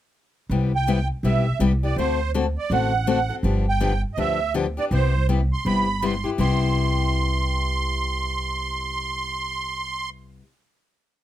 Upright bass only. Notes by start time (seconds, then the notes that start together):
0.49 C2
1.23 B1
1.60 C2
1.96 D2
2.70 A1
3.43 G1
4.17 D2
4.91 C2
5.65 G1
6.38 C2